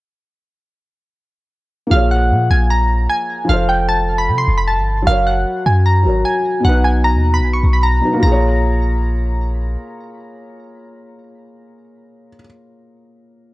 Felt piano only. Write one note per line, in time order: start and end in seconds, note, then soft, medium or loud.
1.87 3.43 F3 medium
1.87 3.44 A#3 medium
1.93 3.47 G#4 medium
1.93 3.48 C#5 medium
3.45 5.01 F3 medium
3.45 5.03 F4 medium
3.50 5.04 A4 medium
3.50 5.06 C5 medium
5.02 6.01 F#3 medium
5.02 6.03 F#4 medium
5.08 6.04 A#4 medium
5.08 6.06 C#5 medium
6.03 6.62 F#3 medium
6.03 6.64 F#4 soft
6.03 6.65 A#4 soft
6.08 6.66 C#5 medium
6.60 7.98 B2 medium
6.60 7.99 F#3 medium
6.66 8.01 D#4 medium
6.66 8.02 B4 medium
8.01 8.22 B2 medium
8.01 8.22 F#3 soft
8.01 8.23 D#4 soft
8.05 8.24 B4 medium
8.14 12.28 A#3 medium
8.20 12.34 F4 medium
8.26 12.40 G#4 medium
8.32 12.46 C#5 loud